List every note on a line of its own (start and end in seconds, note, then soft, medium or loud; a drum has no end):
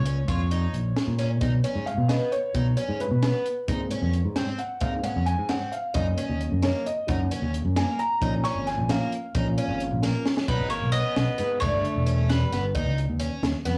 0.00 0.22 C#2 medium
0.00 1.37 A#3 medium
0.00 1.37 F4 medium
0.00 0.27 C#5 medium
0.00 1.38 C#5 medium
0.06 0.17 C#4 medium
0.06 closed hi-hat medium
0.28 0.65 F2 medium
0.28 0.40 F4 medium
0.28 1.15 C#5 medium
0.28 kick medium
0.28 closed hi-hat medium
0.51 0.75 D#4 medium
0.51 closed hi-hat medium
0.73 0.92 A#1 medium
0.73 closed hi-hat medium
0.96 snare loud
0.96 closed hi-hat medium
1.07 1.35 A#2 medium
1.19 1.30 C#4 medium
1.19 snare soft
1.19 closed hi-hat medium
1.41 1.60 B2 medium
1.41 1.71 F#3 soft
1.41 1.72 B3 soft
1.41 1.53 D#4 medium
1.41 1.72 D#4 medium
1.41 kick medium
1.41 closed hi-hat medium
1.64 1.88 C#4 medium
1.64 closed hi-hat medium
1.75 1.94 G#2 medium
1.86 2.10 F5 medium
1.86 closed hi-hat medium
1.97 2.16 B2 medium
2.08 2.33 B3 medium
2.08 2.32 D#5 medium
2.08 snare medium
2.08 closed hi-hat medium
2.32 3.02 C#5 loud
2.32 closed hi-hat medium
2.54 2.73 B2 medium
2.54 2.85 F#3 medium
2.54 2.85 B3 soft
2.54 2.66 D#4 medium
2.54 2.85 D#4 medium
2.54 kick loud
2.54 closed hi-hat medium
2.77 3.01 C#4 medium
2.77 closed hi-hat medium
2.89 3.07 G#2 medium
3.00 3.43 B4 medium
3.00 closed hi-hat medium
3.11 3.30 B2 medium
3.23 3.46 B3 medium
3.23 snare loud
3.23 closed hi-hat medium
3.46 closed hi-hat medium
3.67 3.87 G#2 medium
3.67 3.98 G#3 soft
3.67 3.98 A#3 soft
3.67 3.99 C4 medium
3.67 3.80 D#4 medium
3.67 kick medium
3.67 closed hi-hat medium
3.91 4.15 C#4 medium
3.91 closed hi-hat medium
4.02 4.20 F2 medium
4.13 closed hi-hat medium
4.25 4.43 G#2 medium
4.36 4.60 C4 medium
4.36 snare loud
4.36 closed hi-hat medium
4.58 4.82 F#5 medium
4.58 closed hi-hat soft
4.81 5.00 G#2 medium
4.81 5.11 G#3 soft
4.81 5.11 A#3 soft
4.81 5.12 C4 medium
4.81 4.93 D#4 medium
4.81 5.05 F5 medium
4.81 kick medium
4.81 closed hi-hat medium
5.04 5.27 C#4 medium
5.04 5.27 F#5 medium
5.04 closed hi-hat medium
5.16 5.34 F2 medium
5.26 5.50 G#5 loud
5.26 closed hi-hat medium
5.38 5.57 G#2 medium
5.49 5.73 C4 medium
5.49 5.73 F#5 loud
5.49 snare loud
5.49 closed hi-hat medium
5.72 5.95 F5 medium
5.72 closed hi-hat medium
5.94 6.14 F#2 medium
5.94 6.59 F#3 soft
5.94 6.59 A#3 soft
5.94 6.60 C#4 medium
5.94 6.06 D#4 medium
5.94 6.65 D#5 medium
5.94 kick loud
5.94 closed hi-hat medium
6.18 6.41 C#4 medium
6.18 closed hi-hat medium
6.29 6.48 D#2 medium
6.41 closed hi-hat medium
6.52 6.70 F#2 medium
6.62 6.86 A#3 medium
6.62 6.86 C#5 medium
6.62 snare loud
6.62 closed hi-hat medium
6.86 7.07 D#5 medium
6.86 closed hi-hat medium
7.07 7.27 F#2 medium
7.07 7.38 F#3 medium
7.07 7.38 A#3 soft
7.07 7.39 C#4 medium
7.07 7.20 D#4 medium
7.07 7.51 F#5 medium
7.07 kick loud
7.07 closed hi-hat medium
7.31 7.55 C#4 medium
7.31 closed hi-hat medium
7.42 7.61 D#2 medium
7.54 closed hi-hat medium
7.65 7.83 F#2 loud
7.76 8.00 A#3 medium
7.76 7.98 G#5 medium
7.76 snare loud
7.76 closed hi-hat medium
7.99 8.46 A#5 loud
7.99 closed hi-hat medium
8.21 8.40 A#1 medium
8.21 8.86 F3 soft
8.21 8.86 A#3 medium
8.21 8.86 C#4 medium
8.21 8.34 D#4 medium
8.21 kick loud
8.21 closed hi-hat medium
8.44 8.68 C#4 medium
8.44 8.49 C#6 loud
8.44 snare soft
8.44 closed hi-hat medium
8.55 8.74 G#1 medium
8.67 8.90 G#5 medium
8.67 snare soft
8.67 closed hi-hat medium
8.78 8.97 A#1 loud
8.89 9.10 F3 soft
8.89 9.13 A#3 medium
8.89 9.10 A#3 soft
8.89 9.11 C#4 medium
8.89 9.99 F5 medium
8.89 snare loud
8.89 closed hi-hat medium
9.12 closed hi-hat medium
9.35 9.54 A#1 loud
9.35 10.44 F3 medium
9.35 10.45 A#3 soft
9.35 10.45 C#4 medium
9.35 9.47 D#4 medium
9.35 kick loud
9.35 closed hi-hat medium
9.58 9.81 C#4 medium
9.58 closed hi-hat medium
9.68 9.87 G#1 loud
9.80 closed hi-hat medium
9.91 10.10 A#1 loud
10.03 10.27 A#3 medium
10.03 snare medium
10.26 snare medium
10.37 snare medium
10.47 10.58 B1 medium
10.47 10.69 F#3 medium
10.47 10.72 D#4 medium
10.47 10.69 B4 medium
10.47 kick loud
10.47 crash medium
10.59 10.78 G#1 medium
10.70 10.91 A#3 medium
10.70 10.92 C#5 medium
10.70 closed hi-hat medium
10.82 11.01 B1 medium
10.92 11.57 B3 medium
10.92 11.17 C#4 medium
10.92 11.60 D#5 loud
10.92 closed hi-hat medium
11.16 11.26 B1 medium
11.16 snare loud
11.16 closed hi-hat medium
11.38 11.63 G#2 medium
11.38 11.50 B3 medium
11.38 closed hi-hat medium
11.60 11.71 G1 medium
11.60 12.25 A3 medium
11.60 11.85 D4 medium
11.60 12.29 C#5 medium
11.60 kick loud
11.60 closed hi-hat medium
11.73 11.82 G1 medium
11.85 closed hi-hat medium
11.95 12.42 E1 medium
12.06 12.30 C#4 medium
12.06 closed hi-hat medium
12.29 12.61 G3 medium
12.29 12.61 B4 medium
12.29 snare loud
12.29 closed hi-hat medium
12.52 12.77 G1 medium
12.52 12.64 B3 medium
12.52 snare soft
12.52 closed hi-hat medium
12.75 12.84 D#2 medium
12.75 12.98 D#4 medium
12.75 kick loud
12.75 closed hi-hat medium
12.85 13.05 C#2 medium
12.98 closed hi-hat medium
13.09 13.27 D#2 medium
13.20 13.43 C#4 medium
13.20 closed hi-hat medium
13.43 13.52 D#2 loud
13.43 snare loud
13.43 closed hi-hat medium
13.65 13.78 F2 medium
13.65 13.77 B3 medium
13.65 snare soft
13.65 closed hi-hat medium